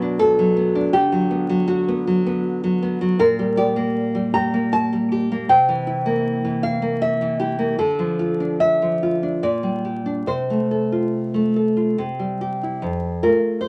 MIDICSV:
0, 0, Header, 1, 2, 480
1, 0, Start_track
1, 0, Tempo, 746269
1, 601, Time_signature, 3, 2, 24, 8
1, 2528, Tempo, 768246
1, 4928, Tempo, 826446
1, 5888, Tempo, 854701
1, 7808, Tempo, 775194
1, 8327, End_track
2, 0, Start_track
2, 0, Title_t, "Nylon-string guitar"
2, 0, Program_c, 0, 24
2, 0, Note_on_c, 0, 47, 67
2, 0, Note_on_c, 0, 54, 57
2, 0, Note_on_c, 0, 59, 54
2, 0, Note_on_c, 0, 71, 99
2, 12, Note_on_c, 0, 62, 57
2, 107, Note_off_c, 0, 71, 0
2, 125, Note_on_c, 0, 69, 97
2, 242, Note_off_c, 0, 54, 0
2, 249, Note_on_c, 0, 54, 58
2, 357, Note_off_c, 0, 59, 0
2, 364, Note_on_c, 0, 59, 57
2, 477, Note_off_c, 0, 62, 0
2, 485, Note_on_c, 0, 62, 54
2, 567, Note_off_c, 0, 47, 0
2, 581, Note_off_c, 0, 69, 0
2, 597, Note_off_c, 0, 59, 0
2, 599, Note_on_c, 0, 67, 96
2, 603, Note_off_c, 0, 62, 0
2, 604, Note_off_c, 0, 54, 0
2, 604, Note_on_c, 0, 50, 72
2, 722, Note_on_c, 0, 54, 55
2, 840, Note_on_c, 0, 59, 52
2, 953, Note_off_c, 0, 54, 0
2, 961, Note_on_c, 0, 54, 64
2, 1062, Note_off_c, 0, 67, 0
2, 1078, Note_on_c, 0, 66, 81
2, 1204, Note_off_c, 0, 59, 0
2, 1212, Note_on_c, 0, 59, 53
2, 1326, Note_off_c, 0, 54, 0
2, 1333, Note_on_c, 0, 54, 55
2, 1449, Note_off_c, 0, 59, 0
2, 1457, Note_on_c, 0, 59, 56
2, 1544, Note_off_c, 0, 66, 0
2, 1688, Note_off_c, 0, 54, 0
2, 1696, Note_on_c, 0, 54, 54
2, 1809, Note_off_c, 0, 59, 0
2, 1817, Note_on_c, 0, 59, 55
2, 1929, Note_off_c, 0, 54, 0
2, 1937, Note_on_c, 0, 54, 55
2, 2017, Note_off_c, 0, 50, 0
2, 2048, Note_off_c, 0, 54, 0
2, 2048, Note_off_c, 0, 59, 0
2, 2054, Note_on_c, 0, 46, 71
2, 2056, Note_on_c, 0, 70, 88
2, 2181, Note_on_c, 0, 55, 55
2, 2279, Note_off_c, 0, 70, 0
2, 2298, Note_on_c, 0, 74, 81
2, 2302, Note_on_c, 0, 67, 53
2, 2420, Note_on_c, 0, 58, 56
2, 2656, Note_off_c, 0, 55, 0
2, 2664, Note_on_c, 0, 55, 49
2, 2760, Note_off_c, 0, 74, 0
2, 2775, Note_off_c, 0, 67, 0
2, 2783, Note_on_c, 0, 67, 54
2, 2783, Note_on_c, 0, 82, 90
2, 2900, Note_off_c, 0, 58, 0
2, 2907, Note_on_c, 0, 58, 48
2, 3012, Note_off_c, 0, 82, 0
2, 3026, Note_on_c, 0, 81, 95
2, 3143, Note_off_c, 0, 55, 0
2, 3151, Note_on_c, 0, 55, 53
2, 3262, Note_off_c, 0, 67, 0
2, 3270, Note_on_c, 0, 67, 54
2, 3386, Note_off_c, 0, 58, 0
2, 3394, Note_on_c, 0, 58, 54
2, 3480, Note_off_c, 0, 46, 0
2, 3485, Note_off_c, 0, 81, 0
2, 3504, Note_on_c, 0, 48, 61
2, 3504, Note_on_c, 0, 79, 83
2, 3505, Note_off_c, 0, 55, 0
2, 3505, Note_off_c, 0, 67, 0
2, 3506, Note_off_c, 0, 58, 0
2, 3625, Note_on_c, 0, 52, 53
2, 3739, Note_on_c, 0, 64, 52
2, 3857, Note_on_c, 0, 58, 50
2, 4092, Note_off_c, 0, 52, 0
2, 4100, Note_on_c, 0, 52, 45
2, 4194, Note_off_c, 0, 79, 0
2, 4207, Note_off_c, 0, 64, 0
2, 4214, Note_on_c, 0, 64, 45
2, 4216, Note_on_c, 0, 77, 78
2, 4326, Note_off_c, 0, 58, 0
2, 4333, Note_on_c, 0, 58, 45
2, 4443, Note_off_c, 0, 77, 0
2, 4457, Note_on_c, 0, 76, 80
2, 4575, Note_off_c, 0, 52, 0
2, 4582, Note_on_c, 0, 52, 46
2, 4682, Note_off_c, 0, 76, 0
2, 4688, Note_off_c, 0, 64, 0
2, 4693, Note_on_c, 0, 67, 69
2, 4697, Note_on_c, 0, 64, 45
2, 4805, Note_off_c, 0, 58, 0
2, 4812, Note_on_c, 0, 58, 45
2, 4904, Note_off_c, 0, 48, 0
2, 4919, Note_off_c, 0, 67, 0
2, 4929, Note_off_c, 0, 58, 0
2, 4930, Note_off_c, 0, 64, 0
2, 4932, Note_off_c, 0, 52, 0
2, 4936, Note_on_c, 0, 50, 60
2, 4937, Note_on_c, 0, 69, 76
2, 5054, Note_on_c, 0, 53, 43
2, 5172, Note_on_c, 0, 65, 46
2, 5294, Note_on_c, 0, 62, 46
2, 5394, Note_off_c, 0, 69, 0
2, 5410, Note_on_c, 0, 76, 69
2, 5530, Note_off_c, 0, 53, 0
2, 5537, Note_on_c, 0, 53, 41
2, 5651, Note_off_c, 0, 65, 0
2, 5658, Note_on_c, 0, 65, 41
2, 5767, Note_off_c, 0, 62, 0
2, 5774, Note_on_c, 0, 62, 40
2, 5868, Note_off_c, 0, 50, 0
2, 5868, Note_off_c, 0, 76, 0
2, 5889, Note_off_c, 0, 62, 0
2, 5890, Note_off_c, 0, 53, 0
2, 5890, Note_off_c, 0, 65, 0
2, 5891, Note_on_c, 0, 46, 51
2, 5892, Note_on_c, 0, 74, 63
2, 6004, Note_on_c, 0, 55, 39
2, 6125, Note_on_c, 0, 67, 39
2, 6244, Note_on_c, 0, 62, 40
2, 6347, Note_off_c, 0, 74, 0
2, 6352, Note_off_c, 0, 46, 0
2, 6363, Note_on_c, 0, 48, 50
2, 6365, Note_off_c, 0, 55, 0
2, 6365, Note_off_c, 0, 62, 0
2, 6365, Note_on_c, 0, 72, 59
2, 6366, Note_off_c, 0, 67, 0
2, 6493, Note_on_c, 0, 57, 38
2, 6610, Note_on_c, 0, 69, 37
2, 6729, Note_on_c, 0, 65, 37
2, 6958, Note_off_c, 0, 57, 0
2, 6965, Note_on_c, 0, 57, 37
2, 7082, Note_off_c, 0, 69, 0
2, 7088, Note_on_c, 0, 69, 38
2, 7197, Note_off_c, 0, 65, 0
2, 7204, Note_on_c, 0, 65, 40
2, 7311, Note_off_c, 0, 48, 0
2, 7311, Note_off_c, 0, 72, 0
2, 7325, Note_on_c, 0, 48, 49
2, 7329, Note_off_c, 0, 65, 0
2, 7330, Note_off_c, 0, 57, 0
2, 7331, Note_off_c, 0, 69, 0
2, 7443, Note_on_c, 0, 55, 35
2, 7565, Note_on_c, 0, 67, 41
2, 7689, Note_on_c, 0, 64, 36
2, 7788, Note_off_c, 0, 48, 0
2, 7795, Note_on_c, 0, 41, 51
2, 7801, Note_off_c, 0, 55, 0
2, 7802, Note_off_c, 0, 67, 0
2, 7805, Note_off_c, 0, 64, 0
2, 8036, Note_off_c, 0, 41, 0
2, 8047, Note_on_c, 0, 70, 57
2, 8049, Note_on_c, 0, 57, 37
2, 8049, Note_on_c, 0, 65, 40
2, 8277, Note_off_c, 0, 70, 0
2, 8281, Note_on_c, 0, 72, 62
2, 8327, Note_off_c, 0, 57, 0
2, 8327, Note_off_c, 0, 65, 0
2, 8327, Note_off_c, 0, 72, 0
2, 8327, End_track
0, 0, End_of_file